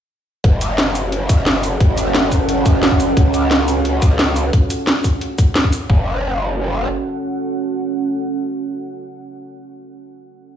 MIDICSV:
0, 0, Header, 1, 4, 480
1, 0, Start_track
1, 0, Key_signature, 3, "minor"
1, 0, Tempo, 340909
1, 621, Time_signature, 4, 2, 24, 8
1, 14878, End_track
2, 0, Start_track
2, 0, Title_t, "Ambient pad"
2, 0, Program_c, 0, 92
2, 621, Note_on_c, 0, 61, 82
2, 621, Note_on_c, 0, 66, 75
2, 621, Note_on_c, 0, 69, 76
2, 621, Note_on_c, 0, 78, 92
2, 4422, Note_off_c, 0, 66, 0
2, 4422, Note_off_c, 0, 78, 0
2, 4423, Note_off_c, 0, 69, 0
2, 4461, Note_on_c, 0, 65, 75
2, 4461, Note_on_c, 0, 68, 75
2, 4461, Note_on_c, 0, 77, 89
2, 6324, Note_off_c, 0, 61, 0
2, 6361, Note_off_c, 0, 65, 0
2, 6361, Note_off_c, 0, 68, 0
2, 6361, Note_off_c, 0, 77, 0
2, 8300, Note_on_c, 0, 61, 82
2, 8300, Note_on_c, 0, 78, 94
2, 8301, Note_on_c, 0, 66, 75
2, 8301, Note_on_c, 0, 69, 77
2, 13136, Note_off_c, 0, 61, 0
2, 13136, Note_off_c, 0, 66, 0
2, 13136, Note_off_c, 0, 69, 0
2, 13136, Note_off_c, 0, 78, 0
2, 14878, End_track
3, 0, Start_track
3, 0, Title_t, "Wobble bass"
3, 0, Program_c, 1, 39
3, 621, Note_on_c, 1, 30, 102
3, 2522, Note_off_c, 1, 30, 0
3, 2541, Note_on_c, 1, 30, 99
3, 4442, Note_off_c, 1, 30, 0
3, 4461, Note_on_c, 1, 37, 98
3, 6361, Note_off_c, 1, 37, 0
3, 8301, Note_on_c, 1, 30, 99
3, 9685, Note_off_c, 1, 30, 0
3, 14878, End_track
4, 0, Start_track
4, 0, Title_t, "Drums"
4, 621, Note_on_c, 9, 36, 119
4, 621, Note_on_c, 9, 42, 84
4, 762, Note_off_c, 9, 36, 0
4, 762, Note_off_c, 9, 42, 0
4, 862, Note_on_c, 9, 42, 98
4, 862, Note_on_c, 9, 82, 64
4, 1002, Note_off_c, 9, 42, 0
4, 1002, Note_off_c, 9, 82, 0
4, 1102, Note_on_c, 9, 38, 119
4, 1102, Note_on_c, 9, 42, 86
4, 1242, Note_off_c, 9, 38, 0
4, 1242, Note_off_c, 9, 42, 0
4, 1341, Note_on_c, 9, 46, 78
4, 1341, Note_on_c, 9, 82, 63
4, 1482, Note_off_c, 9, 46, 0
4, 1482, Note_off_c, 9, 82, 0
4, 1582, Note_on_c, 9, 42, 83
4, 1722, Note_off_c, 9, 42, 0
4, 1821, Note_on_c, 9, 36, 108
4, 1822, Note_on_c, 9, 42, 100
4, 1822, Note_on_c, 9, 82, 64
4, 1962, Note_off_c, 9, 36, 0
4, 1962, Note_off_c, 9, 42, 0
4, 1962, Note_off_c, 9, 82, 0
4, 2062, Note_on_c, 9, 38, 120
4, 2062, Note_on_c, 9, 42, 85
4, 2062, Note_on_c, 9, 82, 29
4, 2203, Note_off_c, 9, 38, 0
4, 2203, Note_off_c, 9, 42, 0
4, 2203, Note_off_c, 9, 82, 0
4, 2301, Note_on_c, 9, 46, 83
4, 2301, Note_on_c, 9, 82, 65
4, 2442, Note_off_c, 9, 46, 0
4, 2442, Note_off_c, 9, 82, 0
4, 2541, Note_on_c, 9, 36, 126
4, 2541, Note_on_c, 9, 42, 84
4, 2682, Note_off_c, 9, 36, 0
4, 2682, Note_off_c, 9, 42, 0
4, 2782, Note_on_c, 9, 42, 96
4, 2782, Note_on_c, 9, 82, 62
4, 2922, Note_off_c, 9, 42, 0
4, 2922, Note_off_c, 9, 82, 0
4, 3021, Note_on_c, 9, 38, 124
4, 3021, Note_on_c, 9, 42, 84
4, 3162, Note_off_c, 9, 38, 0
4, 3162, Note_off_c, 9, 42, 0
4, 3261, Note_on_c, 9, 36, 64
4, 3261, Note_on_c, 9, 46, 80
4, 3261, Note_on_c, 9, 82, 61
4, 3402, Note_off_c, 9, 36, 0
4, 3402, Note_off_c, 9, 46, 0
4, 3402, Note_off_c, 9, 82, 0
4, 3501, Note_on_c, 9, 42, 84
4, 3642, Note_off_c, 9, 42, 0
4, 3741, Note_on_c, 9, 36, 111
4, 3742, Note_on_c, 9, 42, 102
4, 3742, Note_on_c, 9, 82, 62
4, 3882, Note_off_c, 9, 36, 0
4, 3882, Note_off_c, 9, 42, 0
4, 3882, Note_off_c, 9, 82, 0
4, 3982, Note_on_c, 9, 38, 122
4, 3982, Note_on_c, 9, 42, 82
4, 3982, Note_on_c, 9, 82, 28
4, 4101, Note_on_c, 9, 36, 67
4, 4123, Note_off_c, 9, 38, 0
4, 4123, Note_off_c, 9, 42, 0
4, 4123, Note_off_c, 9, 82, 0
4, 4222, Note_on_c, 9, 46, 78
4, 4222, Note_on_c, 9, 82, 62
4, 4241, Note_off_c, 9, 36, 0
4, 4363, Note_off_c, 9, 46, 0
4, 4363, Note_off_c, 9, 82, 0
4, 4461, Note_on_c, 9, 36, 127
4, 4462, Note_on_c, 9, 42, 83
4, 4601, Note_off_c, 9, 36, 0
4, 4603, Note_off_c, 9, 42, 0
4, 4702, Note_on_c, 9, 42, 97
4, 4702, Note_on_c, 9, 82, 58
4, 4843, Note_off_c, 9, 42, 0
4, 4843, Note_off_c, 9, 82, 0
4, 4941, Note_on_c, 9, 38, 127
4, 4941, Note_on_c, 9, 42, 82
4, 5082, Note_off_c, 9, 38, 0
4, 5082, Note_off_c, 9, 42, 0
4, 5182, Note_on_c, 9, 46, 78
4, 5182, Note_on_c, 9, 82, 61
4, 5322, Note_off_c, 9, 46, 0
4, 5322, Note_off_c, 9, 82, 0
4, 5421, Note_on_c, 9, 42, 82
4, 5562, Note_off_c, 9, 42, 0
4, 5661, Note_on_c, 9, 36, 116
4, 5661, Note_on_c, 9, 42, 101
4, 5661, Note_on_c, 9, 82, 62
4, 5802, Note_off_c, 9, 36, 0
4, 5802, Note_off_c, 9, 42, 0
4, 5802, Note_off_c, 9, 82, 0
4, 5901, Note_on_c, 9, 38, 124
4, 5901, Note_on_c, 9, 42, 84
4, 5901, Note_on_c, 9, 82, 27
4, 6042, Note_off_c, 9, 38, 0
4, 6042, Note_off_c, 9, 42, 0
4, 6042, Note_off_c, 9, 82, 0
4, 6141, Note_on_c, 9, 46, 76
4, 6141, Note_on_c, 9, 82, 62
4, 6282, Note_off_c, 9, 46, 0
4, 6282, Note_off_c, 9, 82, 0
4, 6381, Note_on_c, 9, 36, 126
4, 6381, Note_on_c, 9, 42, 79
4, 6522, Note_off_c, 9, 36, 0
4, 6522, Note_off_c, 9, 42, 0
4, 6621, Note_on_c, 9, 42, 93
4, 6621, Note_on_c, 9, 82, 58
4, 6762, Note_off_c, 9, 42, 0
4, 6762, Note_off_c, 9, 82, 0
4, 6861, Note_on_c, 9, 38, 125
4, 6861, Note_on_c, 9, 42, 81
4, 7002, Note_off_c, 9, 38, 0
4, 7002, Note_off_c, 9, 42, 0
4, 7101, Note_on_c, 9, 36, 65
4, 7101, Note_on_c, 9, 46, 79
4, 7101, Note_on_c, 9, 82, 59
4, 7242, Note_off_c, 9, 36, 0
4, 7242, Note_off_c, 9, 46, 0
4, 7242, Note_off_c, 9, 82, 0
4, 7341, Note_on_c, 9, 42, 79
4, 7482, Note_off_c, 9, 42, 0
4, 7581, Note_on_c, 9, 36, 108
4, 7581, Note_on_c, 9, 42, 96
4, 7581, Note_on_c, 9, 82, 59
4, 7722, Note_off_c, 9, 36, 0
4, 7722, Note_off_c, 9, 42, 0
4, 7722, Note_off_c, 9, 82, 0
4, 7821, Note_on_c, 9, 38, 126
4, 7821, Note_on_c, 9, 42, 77
4, 7821, Note_on_c, 9, 82, 27
4, 7941, Note_on_c, 9, 36, 66
4, 7962, Note_off_c, 9, 38, 0
4, 7962, Note_off_c, 9, 42, 0
4, 7962, Note_off_c, 9, 82, 0
4, 8062, Note_on_c, 9, 46, 78
4, 8062, Note_on_c, 9, 82, 60
4, 8082, Note_off_c, 9, 36, 0
4, 8202, Note_off_c, 9, 46, 0
4, 8202, Note_off_c, 9, 82, 0
4, 8302, Note_on_c, 9, 36, 117
4, 8442, Note_off_c, 9, 36, 0
4, 14878, End_track
0, 0, End_of_file